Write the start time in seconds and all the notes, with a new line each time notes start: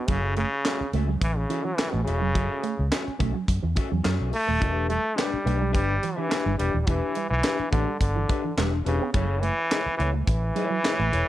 0.08 F#1 C#3 F#3 C#4 F#4 A4 E5, kick, closed hi-hat
0.24 muted clean electric guitar stroke
0.37 C#3 A3, closed hi-hat
0.52 muted clean electric guitar stroke
0.65 C#4 F#4 A4 E5, muted clean electric guitar stroke, snare, clap, closed hi-hat
0.80 muted clean electric guitar stroke, muted fingered electric bass stroke
0.93 C#2 A3 C#4 F#4 A4 E5, closed hi-hat
1.08 F#3, muted clean electric guitar stroke
1.21 A1 E3, muted clean electric guitar stroke, kick, closed hi-hat
1.36 C#3, muted clean electric guitar stroke
1.49 E3 C#4 F#4 A4 E5, closed hi-hat
1.64 E3 F#3, muted clean electric guitar stroke
1.76 E3 C#4 F#4 A4 E5, snare, clap, closed hi-hat
1.91 A1 B2 A3, muted clean electric guitar stroke
2.04 E1 C#3 C#4 F#4 A4 E5, muted clean electric guitar stroke, closed hi-hat
2.20 F1 F#3, muted clean electric guitar stroke
2.34 F#1 F#3 C#4 F#4 A4 E5, kick, closed hi-hat
2.63 A3, closed hi-hat
2.78 C#2, muted clean electric guitar stroke
2.91 C#4 F#4 A4 E5, muted clean electric guitar stroke, snare, clap, closed hi-hat
3.06 muted clean electric guitar stroke, muted fingered electric bass stroke
3.19 B1 A3 C#4 F#4 A4 E5, kick, closed hi-hat
3.34 F#3, muted clean electric guitar stroke
3.48 F#2, muted clean electric guitar stroke, kick, closed hi-hat
3.62 E2 E3, muted clean electric guitar stroke
3.75 C#4 F#4 A4 E5, muted clean electric guitar stroke, kick, closed hi-hat
3.91 E2 F#3, muted clean electric guitar stroke
4.03 F#2 F#3 C#4 F#4 A4 E5, snare, clap, closed hi-hat
4.20 B1
4.32 A3, muted clean electric guitar stroke, open hi-hat
4.47 D#1 A3, muted clean electric guitar stroke
4.60 E1 E3 C#4 F#4 A#4 D#5, kick, closed hi-hat
4.71 D4 G4 B4 E5
4.77 muted clean electric guitar stroke
4.89 G3 A3, closed hi-hat
5.03 muted clean electric guitar stroke
5.16 G3 D4 G4 B4 E5, muted clean electric guitar stroke, snare, clap, closed hi-hat
5.32 muted clean electric guitar stroke, muted fingered electric bass stroke
5.45 B1 A3 D4 G4 B4 E5, closed hi-hat
5.59 G3, muted clean electric guitar stroke
5.72 G1 G3 D4 G4 B4 E5, kick, closed hi-hat
6.01 E3, muted clean electric guitar stroke, closed hi-hat
6.16 E3 D4 G4 B4 E5
6.29 D4 G4 B4 E5, snare, clap, closed hi-hat
6.45 G1 G3, muted clean electric guitar stroke
6.58 E1 G3 D4 G4 B4 E5, muted clean electric guitar stroke, closed hi-hat
6.74 D#1 E3, muted clean electric guitar stroke
6.81 G3
6.87 E1 E3 D4 G4 B4 E5, kick, closed hi-hat
7.03 muted clean electric guitar stroke
7.15 G3, closed hi-hat
7.30 B1 E3, muted clean electric guitar stroke
7.43 D4 G4 B4 E5, muted clean electric guitar stroke, snare, clap, closed hi-hat
7.58 muted clean electric guitar stroke, muted fingered electric bass stroke
7.71 A1 D3 A3 D4 G4 B4 E5, kick, closed hi-hat
7.87 G3, muted clean electric guitar stroke
8.00 G1 D3, muted clean electric guitar stroke, kick, closed hi-hat
8.16 E3, muted clean electric guitar stroke
8.29 D4 G4 B4 E5, kick, closed hi-hat
8.44 E3, muted clean electric guitar stroke
8.57 E1 G3 D4 G4 B4 E5, snare, clap, closed hi-hat
8.73 muted clean electric guitar stroke
8.85 E1 C#3 D4 G4 B4 E5, muted clean electric guitar stroke, closed hi-hat
9.01 B3, muted clean electric guitar stroke
9.13 F#1 C#3 F#3 E4 A4 C#5 E5, kick, closed hi-hat
9.29 muted clean electric guitar stroke
9.41 E3 A3, closed hi-hat
9.58 muted clean electric guitar stroke
9.71 E4 A4 C#5 E5, snare, clap, closed hi-hat
9.86 muted fingered electric bass stroke, muted clean electric guitar stroke
9.97 C#2 E3 B3 E4 A4 C#5 E5, closed hi-hat
10.13 A3, muted clean electric guitar stroke
10.25 A1 E3, muted clean electric guitar stroke, kick, closed hi-hat
10.43 muted clean electric guitar stroke
10.55 F#3 E4 A4 C#5 E5, closed hi-hat
10.70 F#3, muted clean electric guitar stroke
10.83 E4 A4 C#5 E5, snare, clap, closed hi-hat
10.99 A1 A3, muted clean electric guitar stroke
11.12 E1 E4 A4 C#5 E5, muted clean electric guitar stroke, closed hi-hat